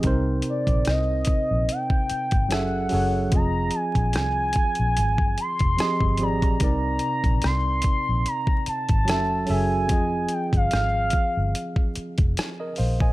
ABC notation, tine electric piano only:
X:1
M:4/4
L:1/16
Q:"Swing 16ths" 1/4=73
K:Fdor
V:1 name="Tine electric piano"
[C,CEBc]8 z4 [^F,^CA=A=e]2 [F,C_A=A^c]2 | [F,CFAe]8 z4 [F,CGAe]2 [F,CGAd]2 | [C,CEBd]8 z4 [^F,^C^F=A=e]2 [F,C_A=Ae]2 | [F,CFAe]8 z4 z [Be] [cf] [ea] |]